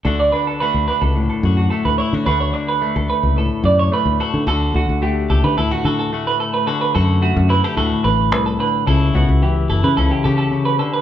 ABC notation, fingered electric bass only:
X:1
M:4/4
L:1/16
Q:1/4=109
K:D
V:1 name="Fingered electric bass" clef=bass
D,,2 z3 D,, z C,,2 z F,,2 z D,, z D, | D,,2 z3 D,, z C,,2 z F,,2 z D,, z D, | D,,2 D,, D,,3 C,, D, D,, z D,2 z4 | z2 F,,3 F,,2 z D,, z A,,,2 =C,,2 z2 |
C,,2 C,, C,,3 F,,, C, C,, z C,2 z4 |]